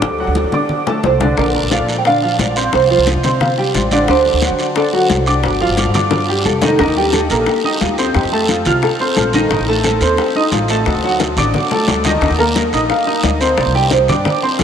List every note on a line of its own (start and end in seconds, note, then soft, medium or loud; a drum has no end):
0.00 0.26 D2 medium
0.00 0.13 D4 medium
0.00 0.49 A4 medium
0.00 0.13 D5 medium
0.00 0.13 D6 medium
0.00 high bongo loud
0.19 0.47 F#3 medium
0.19 0.47 F#4 medium
0.19 0.47 F#5 medium
0.19 high conga soft
0.27 0.43 D2 medium
0.35 high conga medium
0.44 1.01 D3 medium
0.52 0.81 D4 medium
0.52 0.81 D5 medium
0.52 0.81 D6 medium
0.52 high conga medium
0.52 low conga medium
0.69 high conga soft
0.69 low conga medium
0.86 1.15 A3 medium
0.86 1.15 A4 medium
0.86 1.15 A5 medium
0.86 low bongo loud
0.86 high conga soft
1.03 1.36 C2 medium
1.03 1.38 C5 medium
1.03 low bongo loud
1.03 high conga medium
1.20 1.35 D3 medium
1.20 1.35 D4 medium
1.20 1.35 D5 medium
1.20 low bongo loud
1.20 high conga medium
1.37 1.61 A#1 medium
1.37 1.66 D3 medium
1.37 1.66 D4 medium
1.37 1.54 A#4 loud
1.37 1.66 D5 medium
1.37 high bongo medium
1.37 high conga soft
1.37 long guiro medium
1.54 1.71 A#4 loud
1.54 high bongo soft
1.54 high conga soft
1.62 1.79 A#1 medium
1.71 1.99 F3 medium
1.71 2.00 F4 medium
1.71 1.98 D5 loud
1.71 2.00 F5 medium
1.71 high bongo medium
1.71 high conga medium
1.71 short guiro medium
1.80 2.36 A#2 medium
1.88 high bongo soft
1.88 high conga soft
1.88 short guiro medium
1.98 2.05 G5 medium
2.05 2.19 D3 medium
2.05 2.19 D4 medium
2.05 2.20 D5 medium
2.05 2.39 F5 loud
2.05 high bongo medium
2.05 high conga soft
2.05 long guiro medium
2.22 2.50 F3 medium
2.22 2.50 F4 medium
2.22 2.51 F5 medium
2.22 high bongo soft
2.22 high conga soft
2.38 2.71 A#1 medium
2.38 2.73 D5 loud
2.38 high bongo soft
2.38 low bongo medium
2.38 high conga medium
2.38 short guiro medium
2.56 2.84 C4 medium
2.56 2.84 C5 medium
2.56 2.84 C6 medium
2.56 short guiro medium
2.73 2.97 C2 medium
2.73 2.90 C5 loud
2.73 high bongo medium
2.73 high conga soft
2.73 long guiro medium
2.90 3.18 F3 medium
2.90 3.18 F4 medium
2.90 3.07 C5 loud
2.90 3.18 F5 medium
2.90 high bongo soft
2.90 high conga soft
2.98 3.14 C2 medium
3.07 3.41 D#5 loud
3.07 high bongo medium
3.07 high conga loud
3.07 short guiro medium
3.15 3.72 C3 medium
3.23 3.52 C4 medium
3.23 3.52 C5 medium
3.23 3.52 C6 medium
3.23 high bongo soft
3.23 high conga medium
3.23 low conga medium
3.23 short guiro medium
3.40 3.72 F5 medium
3.40 high bongo medium
3.40 high conga soft
3.40 low conga medium
3.40 long guiro medium
3.58 3.85 G3 medium
3.58 3.86 G4 medium
3.58 3.86 G5 medium
3.58 high bongo soft
3.58 high conga soft
3.74 4.06 A1 medium
3.74 4.06 D5 loud
3.74 high bongo soft
3.74 low bongo medium
3.74 high conga medium
3.74 short guiro medium
3.91 4.05 D3 medium
3.91 4.06 D4 medium
3.91 4.06 D5 medium
3.91 high conga medium
3.91 short guiro medium
4.08 4.32 D2 medium
4.08 4.36 D3 medium
4.08 4.37 D4 medium
4.08 4.76 C5 loud
4.08 4.37 D5 medium
4.08 high bongo medium
4.08 high conga soft
4.08 long guiro medium
4.25 high bongo soft
4.25 high conga soft
4.33 4.49 D2 medium
4.42 4.70 F#3 medium
4.42 4.71 F#4 medium
4.42 4.71 F#5 medium
4.42 high bongo medium
4.42 high conga medium
4.42 short guiro medium
4.51 5.07 D3 medium
4.59 high bongo soft
4.59 high conga soft
4.59 short guiro medium
4.75 4.90 D3 medium
4.75 4.90 D4 medium
4.75 4.94 A4 medium
4.75 4.91 D5 medium
4.75 high bongo medium
4.75 high conga soft
4.75 long guiro medium
4.93 5.21 F#3 medium
4.93 5.27 F#4 medium
4.93 5.21 F#4 medium
4.93 5.21 F#5 medium
4.93 high bongo soft
4.93 high conga soft
5.09 5.42 C2 medium
5.09 high bongo soft
5.09 low bongo medium
5.09 high conga medium
5.09 short guiro medium
5.26 5.54 D4 medium
5.26 6.58 G4 medium
5.26 5.55 D5 medium
5.26 5.55 D6 medium
5.26 short guiro medium
5.43 5.67 G1 medium
5.43 high bongo medium
5.43 high conga soft
5.43 long guiro medium
5.60 5.88 F3 medium
5.60 5.89 F4 medium
5.60 5.89 F5 medium
5.60 high bongo soft
5.60 high conga soft
5.69 5.85 G1 medium
5.77 high bongo medium
5.77 high conga loud
5.77 short guiro medium
5.86 6.42 G2 medium
5.94 6.22 D4 medium
5.94 6.23 D5 medium
5.94 6.23 D6 medium
5.94 high bongo soft
5.94 high conga medium
5.94 low conga medium
5.94 short guiro medium
6.11 high bongo loud
6.11 high conga soft
6.11 low conga medium
6.11 long guiro medium
6.28 6.56 G3 medium
6.28 6.56 G4 medium
6.28 6.57 G5 medium
6.28 high conga soft
6.45 6.77 F1 medium
6.45 6.78 A4 loud
6.45 high conga medium
6.45 short guiro medium
6.62 6.76 D#3 medium
6.62 6.76 D#4 medium
6.62 6.77 D#5 medium
6.62 low bongo loud
6.62 high conga medium
6.62 short guiro medium
6.79 6.87 D#2 loud
6.79 6.93 D#3 medium
6.79 6.93 D#4 medium
6.79 7.05 A#4 loud
6.79 6.94 D#5 medium
6.79 high bongo medium
6.79 high conga soft
6.79 long guiro medium
6.87 7.28 D#2 loud
6.96 7.24 G3 medium
6.96 7.24 G4 medium
6.96 7.25 G5 medium
6.96 high bongo soft
6.96 high conga soft
7.06 7.12 A#4 medium
7.13 7.48 A4 loud
7.13 high bongo medium
7.13 high conga medium
7.13 short guiro medium
7.29 7.46 A#1 medium
7.29 7.58 A#3 medium
7.29 7.58 A#4 medium
7.29 7.58 A#5 medium
7.29 high bongo soft
7.29 high conga soft
7.29 short guiro medium
7.46 7.79 G4 medium
7.46 high bongo medium
7.46 high conga soft
7.46 long guiro medium
7.64 7.92 D#4 medium
7.64 7.92 D#5 medium
7.64 7.92 D#6 medium
7.64 high bongo soft
7.64 high conga soft
7.81 8.13 D#2 loud
7.81 8.15 F4 medium
7.81 high bongo soft
7.81 low bongo medium
7.81 high conga medium
7.81 short guiro medium
7.98 8.26 C4 medium
7.98 8.26 C5 medium
7.98 8.26 C6 medium
7.98 high conga soft
7.98 short guiro medium
8.14 8.23 F2 loud
8.14 8.49 G4 loud
8.14 high bongo medium
8.14 high conga soft
8.14 long guiro medium
8.24 8.64 F2 loud
8.32 8.60 A3 medium
8.32 8.60 A4 medium
8.32 8.60 A5 medium
8.32 high bongo soft
8.32 high conga soft
8.48 8.84 F4 medium
8.48 high bongo medium
8.48 high conga medium
8.48 short guiro medium
8.65 8.82 C2 medium
8.65 8.94 F4 medium
8.65 8.94 F5 medium
8.65 8.94 F6 medium
8.65 high bongo soft
8.65 high conga soft
8.65 low conga medium
8.65 short guiro medium
8.82 9.16 A4 loud
8.82 high bongo medium
8.82 high conga soft
8.82 long guiro medium
9.00 9.28 C4 medium
9.00 9.28 C5 medium
9.00 9.28 C6 medium
9.00 high bongo soft
9.00 high conga soft
9.16 9.48 A#1 loud
9.16 9.50 A4 loud
9.16 high bongo soft
9.16 low bongo medium
9.16 high conga medium
9.16 short guiro medium
9.33 9.48 D#3 medium
9.33 9.48 D#4 loud
9.33 9.48 D#5 medium
9.33 high conga medium
9.33 short guiro medium
9.49 9.58 A1 loud
9.49 9.65 D#3 medium
9.49 9.65 D#4 medium
9.49 9.84 A#4 loud
9.49 9.65 D#5 medium
9.49 high bongo medium
9.49 high conga soft
9.49 long guiro medium
9.58 9.99 A1 medium
9.67 9.96 A3 medium
9.67 9.96 A4 medium
9.67 9.96 A5 medium
9.67 high bongo soft
9.67 high conga soft
9.84 10.19 A4 medium
9.84 high bongo medium
9.84 high conga loud
9.84 short guiro medium
10.01 10.17 D#2 medium
10.01 10.29 C4 medium
10.01 10.30 C5 medium
10.01 10.30 C6 medium
10.01 high bongo soft
10.01 high conga soft
10.01 short guiro medium
10.17 10.52 G4 medium
10.17 high bongo medium
10.17 high conga soft
10.17 long guiro medium
10.35 10.63 D#4 medium
10.35 10.63 D#5 medium
10.35 10.64 D#6 medium
10.35 high bongo soft
10.35 high conga soft
10.52 10.84 A1 loud
10.52 10.86 F4 medium
10.52 high bongo soft
10.52 low bongo medium
10.52 high conga medium
10.52 short guiro medium
10.68 10.97 A3 medium
10.68 10.97 A4 medium
10.68 10.98 A5 medium
10.68 high conga soft
10.68 short guiro medium
10.85 10.93 D2 loud
10.85 11.50 F#4 medium
10.85 high bongo medium
10.85 high conga soft
10.85 long guiro medium
10.94 11.35 D2 loud
11.03 11.31 F#3 medium
11.03 11.31 F#4 medium
11.03 11.32 F#5 medium
11.03 high bongo soft
11.03 high conga soft
11.20 high bongo medium
11.20 high conga medium
11.20 short guiro medium
11.36 11.53 A1 medium
11.36 11.65 D4 medium
11.36 11.65 D5 medium
11.36 11.65 D6 medium
11.36 high conga soft
11.36 low conga medium
11.36 short guiro medium
11.54 high bongo medium
11.54 high conga soft
11.54 low conga medium
11.54 long guiro medium
11.71 11.99 A3 medium
11.71 11.99 A4 medium
11.71 11.99 A5 medium
11.71 low bongo medium
11.71 high conga soft
11.87 12.20 D2 medium
11.87 low bongo medium
11.87 high conga medium
11.87 short guiro medium
12.04 12.19 D#3 medium
12.04 12.19 D#4 medium
12.04 12.19 D#5 medium
12.04 low bongo medium
12.04 high conga medium
12.04 short guiro medium
12.21 12.29 D#2 loud
12.21 12.36 D#3 medium
12.21 12.36 D#4 medium
12.21 12.36 D#5 medium
12.21 high bongo medium
12.21 long guiro medium
12.30 12.70 D#2 loud
12.38 12.67 A#3 medium
12.38 12.44 A4 loud
12.38 12.67 A#4 medium
12.38 12.67 A#5 medium
12.38 high bongo soft
12.38 high conga soft
12.55 12.89 A#4 loud
12.55 high bongo medium
12.55 high conga loud
12.55 short guiro medium
12.72 12.89 A#1 medium
12.72 13.01 D#4 medium
12.72 13.01 D#5 medium
12.72 13.01 D#6 medium
12.72 high bongo soft
12.72 high conga soft
12.72 short guiro medium
12.89 13.23 F5 loud
12.89 high bongo medium
12.89 high conga soft
12.89 long guiro medium
13.07 13.34 D#4 medium
13.07 13.35 D#5 medium
13.07 13.35 D#6 medium
13.07 high bongo soft
13.07 high conga soft
13.23 13.56 D2 loud
13.23 13.55 D#5 loud
13.23 high bongo soft
13.23 low bongo medium
13.23 high conga medium
13.23 short guiro medium
13.40 13.68 C4 medium
13.40 13.69 C5 medium
13.40 13.69 C6 medium
13.40 high conga soft
13.40 short guiro medium
13.57 13.65 C2 loud
13.57 13.93 D5 loud
13.57 high bongo medium
13.57 high conga soft
13.57 long guiro medium
13.66 14.06 C2 loud
13.74 14.02 G3 medium
13.74 14.03 G4 medium
13.74 14.03 G5 medium
13.74 high bongo soft
13.74 high conga soft
13.91 14.27 C5 loud
13.91 high bongo medium
13.91 high conga medium
13.91 short guiro medium
14.08 14.25 G2 medium
14.08 14.37 D4 medium
14.08 14.37 D5 medium
14.08 14.37 D6 medium
14.08 high bongo soft
14.08 high conga soft
14.08 low conga medium
14.08 short guiro medium
14.25 14.61 D5 loud
14.25 high bongo medium
14.25 high conga soft
14.25 low conga medium
14.25 long guiro medium
14.42 14.64 C4 medium
14.42 14.64 C5 medium
14.42 14.64 C6 medium
14.42 high bongo soft
14.42 high conga soft
14.59 14.64 C2 loud
14.59 14.64 A4 medium
14.59 high bongo soft
14.59 low bongo medium
14.59 high conga medium
14.59 short guiro medium